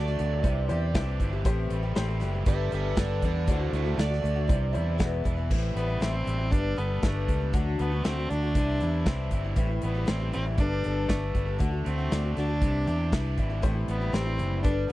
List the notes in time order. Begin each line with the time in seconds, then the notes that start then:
Already playing: D2 D3 A3 D4 F#4 A4 D5 F#5 D6
0.06 A3 D4 F#4, snare
0.19 D2 D3 F#3 A3 D4 F#4, closed hi-hat
0.43 C2 C3 E3 G3 D4 E4 G4 C5 D5 E5 G5, kick, closed hi-hat
0.69 E2 E3 G3 D4 E4 G4 C5 D5, closed hi-hat
0.94 C2 C3 E3 G3 D4 E4 G4 C5 E5, kick, snare, closed hi-hat
1.20 G1 E3 G3 D4 G4, kick, closed hi-hat
1.33 G3 D4 G4
1.45 A1 A2 E3 G3 C4 G4 A4 C5 C6, kick, closed hi-hat
1.70 A1 G3, closed hi-hat
1.83 G3 C4 G4
1.95 A1 A2 E3 G3 C4 G4 A4 C5, snare, closed hi-hat
2.08 G3 C4 G4
2.20 F#1 E3 G3 C4 G4, snare, closed hi-hat
2.34 G3 C4 G4
2.45 G1 G3 B3 D4 G4 A4 B4 D5 E5 G5 B5, kick, closed hi-hat
2.70 G1 G3 B3 D4 G4 A4 B4, closed hi-hat
2.75 E5
2.95 G1 G3 B3 D4 G4 A4 B4, kick, snare, closed hi-hat
3.00 D5
3.21 E2 G3 B3 D4 A4, kick, closed hi-hat
3.25 A4 D5
3.34 B3 D4 A4
3.47 D2 D3 A3 D4 E4 F#4 A4 D5 F#5 D6, kick, closed hi-hat
3.52 C5
3.60 A3 D4 F#4
3.73 D2 A3 E4 C5, closed hi-hat
3.84 A3 D4 F#4
3.98 D2 D3 A3 D4 F#4 A4 D5, snare, closed hi-hat
4.10 A3 D4 F#4, snare
4.22 D2 D3 A3 D4 F#4, closed hi-hat
4.36 A3 D4 F#4
4.48 C2 C3 E3 G3 D4 E4 C5 D5 E5 G5, kick, closed hi-hat
4.73 E2 E3 G3 D4 E4 C5 D5, closed hi-hat
4.98 E1 E2 B2 E3 G#3 B3 E4 G#4 B4 E5 G#5 E6, kick, snare, closed hi-hat
5.24 E1 E3 G#3 B3 E4, kick, closed hi-hat
5.37 E3 G#3 B3 E4
5.50 A1 A2 E3 G3 C4 E4, kick, crash
5.75 A1 G3 B3, closed hi-hat
5.88 G3 C4 E4
6.00 A1 A2 E3 G3 C4 E4, snare, closed hi-hat
6.13 G3 C4 E4
6.25 A1 E3 G3 C4 E4, closed hi-hat
6.38 G3 C4 E4
6.51 G1 G3 B3 D4 A4, kick, closed hi-hat
6.76 G1 G3 B3 D4 A4, closed hi-hat
7.02 G1 G3 A3 B3 D4 A4, kick, snare, closed hi-hat
7.28 C#2 G3 B3 D4 A4, kick, closed hi-hat
7.40 B3 D4 A4
7.53 D2 D3 F#3 A3 D4 F#4, kick, closed hi-hat
7.78 D2 A3 B3, closed hi-hat
7.92 A3 D4 F#4
8.03 D2 D3 F#3 A3 C4 D4 F#4, snare, closed hi-hat
8.18 A3 D4 F#4
8.29 D2 D3 F#3 A3 D4 F#4, snare, closed hi-hat
8.43 A3 D4 F#4
8.55 C2 C3 E3 G3 D4 E4, kick, closed hi-hat
8.80 E2 E3 G3 D4 E4, closed hi-hat
9.06 C2 C3 E3 G3 C4 D4 E4, kick, snare, closed hi-hat
9.31 G1 E3 G3 D4 E4, kick, closed hi-hat
9.45 G3 D4 E4
9.56 A1 A2 E3 G3 C4 E4, kick, closed hi-hat
9.69 G3 C4 E4
9.82 A1 G3 B3, closed hi-hat
9.95 G3 C4 E4
10.06 A1 A2 E3 G3 C4 E4, snare, closed hi-hat
10.20 G3 C4 E4
10.32 A1 E3 G3 C4 E4, closed hi-hat
10.46 G3 C4 E4
10.58 G1 G3 B3 D4 A4, kick, closed hi-hat
10.84 G1 G3 B3 D4 A4, closed hi-hat
11.08 G1 G3 A3 B3 D4 A4, kick, snare, closed hi-hat
11.35 G1 G3 B3 D4 A4, kick, closed hi-hat
11.46 B3 D4 A4
11.59 D2 D3 A3 D4 F#4, kick, closed hi-hat
11.71 A3 D4 F#4
11.85 D2 A3 C4, closed hi-hat
11.98 A3 D4 F#4
12.11 D2 D3 A3 D4 F#4, snare, closed hi-hat
12.24 A3 D4 F#4
12.36 D2 D3 A3 D4 F#4, snare, closed hi-hat
12.48 A3 D4 F#4
12.61 C2 C3 E3 G3 D4 E4, kick, closed hi-hat
12.86 E2 E3 G3 D4 E4 G4, closed hi-hat
13.12 C2 C3 E3 G3 D4 E4, kick, snare, closed hi-hat
13.37 G#1 E3 G3 D4 E4, kick, closed hi-hat
13.50 G3 D4 E4
13.62 A1 A2 E3 G3 C4 E4 G4 A4 C5, kick, closed hi-hat
13.75 G3 C4 E4
13.88 A1 G3 B3, closed hi-hat
14.01 G3 C4 E4
14.13 A1 A2 E3 G3 C4 E4 G4 A4 C5, snare, closed hi-hat
14.26 G3 C4 E4
14.38 F#1 E3 G3 C4 E4, closed hi-hat
14.62 G1 G3 B3 D4 G4 A4 B4, kick, closed hi-hat
14.88 G3 B3